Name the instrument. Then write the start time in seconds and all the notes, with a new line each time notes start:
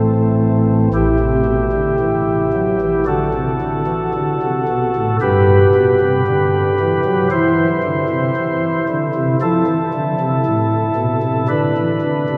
pipe organ
Already playing: A1 A2 E3 A3 C4
0.93 E3 E4 G4
1.20 C3
1.46 B2
1.72 D3
2.00 E3
2.53 F#3
2.81 E3
3.06 D3 F#4 A4
3.34 C3
3.62 D3
3.87 E3
4.15 D3
4.42 C3
4.68 B2
4.96 A2
5.21 G2 G4 B4
5.75 B2
6.00 C3
6.27 D3
6.80 E3
7.05 F#3
7.31 E3 E4 C5
7.84 D3
8.09 C3
8.37 E3
8.89 D3
9.15 C3
9.41 F3 E4 A4
9.67 E3
9.94 D3
10.20 C3
10.46 A2
10.96 B2
11.23 C3
11.48 D3 D4 B4
11.77 E3
12.02 D3
12.29 C3